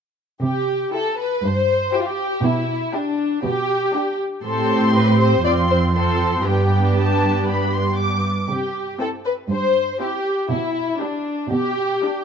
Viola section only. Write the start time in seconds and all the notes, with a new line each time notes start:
0.92 E4 G4
1.94 E4 G4
2.94 D4 G4
3.95 D4 G4
4.45 C4 G4
5.45 C4 F4
5.95 C4 F4
6.45 B3 D4
9.00 C4 E4
10.01 C4 E4
11.01 D4 G4
12.02 D4 G4